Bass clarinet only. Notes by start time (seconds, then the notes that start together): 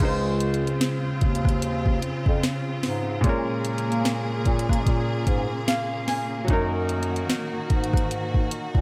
0.00 C#2
1.05 D#2
1.22 D#2
2.03 F2
2.26 F2
2.84 G#2
3.24 A#2
3.65 A#3
3.89 A#3
4.46 A#2
4.69 A#3
4.86 A#2
5.27 G#2
6.49 F#2
7.53 G#2
7.70 G#2
8.52 A#2
8.75 A#2